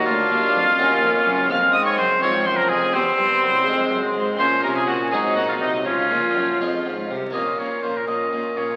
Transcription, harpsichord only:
<<
  \new Staff \with { instrumentName = "Harpsichord" } { \time 6/8 \key des \major \tempo 4. = 82 <bes f'>4. <bes ees' ges'>4. | r4. <aes c' f'>4. | <c' g'>4. <aes c' f'>4. | <des' f'>4. <aes c' ges'>4. |
r4. <aes des' f'>4. | \key bes \minor <bes des' f'>2. | }
  \new Staff \with { instrumentName = "Harpsichord" } { \clef bass \time 6/8 \key des \major d,8 ees,8 f,8 ees,8 f,8 ges,8 | f,8 aes,8 ges,8 aes,8 ges,8 f,8 | e,8 g,8 ges,8 f,8 ges,8 aes,8 | bes,8 c8 bes,8 aes,8 bes,8 c8 |
des8 bes,8 ges,8 f,8 aes,8 c8 | \key bes \minor bes,8 bes,8 bes,8 bes,8 bes,8 bes,8 | }
>>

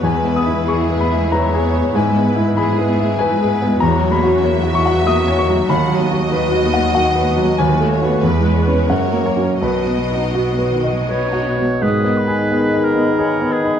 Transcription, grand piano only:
\new Staff \with { instrumentName = "Grand piano" } { \time 3/4 \key b \major \tempo 4 = 94 << { gis''8 dis'''8 cis'''8 b''8 ais''4 | gis''4 b''4 gis''4 | ais''8 b''4 cis'''8 dis'''8 cis'''8 | b''2 fis''8 r8 |
gis''2 fis''8 cis''8 | b'2 r4 | \key gis \minor r2. | } \\ { \tuplet 3/2 { e,8 b8 e'8 gis'8 b'8 e''8 b'8 gis'8 b8 } | \tuplet 3/2 { gis,8 b8 e'8 gis'8 b'8 e''8 b'8 gis'8 b8 } | \tuplet 3/2 { e,8 fis8 fis'8 cis''8 fis'8 fis''8 fis'8 cis''8 fis8 } | \tuplet 3/2 { dis,8 fis8 fis'8 b'8 fis'8 fis''8 fis'8 b'8 fis8 } |
\tuplet 3/2 { dis,8 a8 <fis' b'>8 e,8 gis8 <cis' b'>8 fis,8 ais8 <cis' fis'>8 } | \tuplet 3/2 { b,,8 b8 dis'8 fis'8 b'8 dis''8 b'8 fis'8 b8 } | \tuplet 3/2 { gis,8 b8 gis'8 b8 dis'8 b8 gis'8 b8 dis'8 } | } >> }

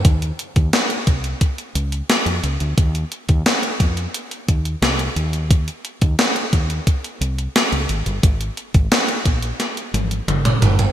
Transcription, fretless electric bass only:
\new Staff \with { instrumentName = "Fretless electric bass" } { \clef bass \time 4/4 \key c \phrygian \tempo 4 = 88 ees,8 r16 ees,16 r8 c,8 r8 des,8 r16 f,16 des,16 d,16 | ees,8 r16 ees,16 r8 f,8 r8 ees,8 c,8 ees,8~ | ees,8 r16 ees,16 r8 ees,8 r8 c,8 r16 des,16 aes,,16 g,,16 | aes,,8 r16 aes,,16 r8 bes,,8 r8 aes,,8 g,,8 g,,8 | }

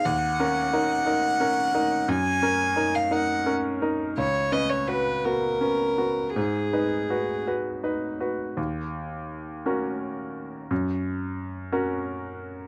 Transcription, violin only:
\new Staff \with { instrumentName = "Violin" } { \time 6/8 \key dis \phrygian \tempo 4. = 57 fis''2. | gis''4~ gis''16 eis''16 fis''8 r4 | cis''8 dis''16 cis''16 b'8 ais'4. | gis'4. r4. |
r2. | r2. | }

